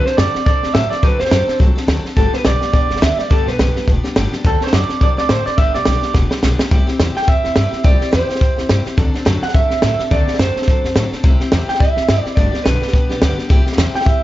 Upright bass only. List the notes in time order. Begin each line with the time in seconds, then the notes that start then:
0.18 F#2
0.35 muted upright bass stroke
0.46 C2
0.63 D2
0.75 A2
0.91 muted upright bass stroke
1.03 D2
1.20 F#2
1.31 F#2
1.48 muted upright bass stroke
1.60 C2
1.76 muted upright bass stroke
1.87 D2
2.04 muted upright bass stroke
2.16 G1
2.33 muted upright bass stroke
2.45 B1
2.61 muted upright bass stroke
2.74 E1
2.90 G1
3.02 D2
3.19 muted upright bass stroke
3.30 G1
3.47 B1
3.59 B1
3.75 muted upright bass stroke
3.87 E1
4.16 G1
4.33 muted upright bass stroke
4.45 D2
4.61 muted upright bass stroke
4.73 F#2
4.89 muted upright bass stroke
5.01 C2
5.18 D2
5.29 A2
5.46 muted upright bass stroke
5.58 G1
5.75 B1
5.86 B1
6.03 muted upright bass stroke
6.15 E1
6.43 B1
6.59 muted upright bass stroke
6.71 C2
6.99 E2
7.16 muted upright bass stroke
7.28 E2
7.45 E2
7.57 G2
7.72 muted upright bass stroke
7.84 C2
8.13 E2
8.29 muted upright bass stroke
8.41 E2
8.58 E2
8.70 G2
8.86 muted upright bass stroke
8.98 D2
9.26 F#2
9.42 muted upright bass stroke
9.54 F#2
9.72 F#2
9.83 A2
10.00 muted upright bass stroke
10.11 D2
10.39 F#2
10.56 muted upright bass stroke
10.68 F#2
10.84 F#2
10.96 A2
11.12 muted upright bass stroke
11.24 C2
11.41 muted upright bass stroke
11.52 E2
11.69 muted upright bass stroke
11.80 E2
11.97 E2
12.09 G2
12.25 muted upright bass stroke
12.37 G1
12.54 muted upright bass stroke
12.65 B1
12.82 muted upright bass stroke
12.94 B1
13.10 B1
13.21 D2
13.38 muted upright bass stroke
13.50 C2
13.66 muted upright bass stroke
13.77 E2
13.94 muted upright bass stroke
14.06 E2